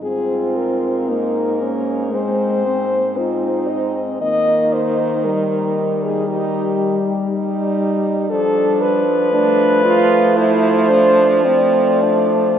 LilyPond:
<<
  \new Staff \with { instrumentName = "French horn" } { \time 4/4 \key aes \major \tempo 4 = 58 aes'8 bes'4. c''4 f'8 ees''8 | ees''8 c''8 bes'8. aes'16 g'4. r8 | \key d \dorian a'8 b'4. c''4 d''4 | }
  \new Staff \with { instrumentName = "French horn" } { \time 4/4 \key aes \major f'4 ees'8 des'8 c'4 ees'4 | ees'2 ees'8. r16 ees'4 | \key d \dorian d'4 d'8 f'8 e'8 d'8 c'8 d'8 | }
  \new Staff \with { instrumentName = "French horn" } { \time 4/4 \key aes \major c'4 bes4 aes8 c'4. | bes4 g2.~ | \key d \dorian g8. r16 a2 a4 | }
  \new Staff \with { instrumentName = "French horn" } { \clef bass \time 4/4 \key aes \major aes,1 | ees2~ ees8. r16 g4 | \key d \dorian f1 | }
>>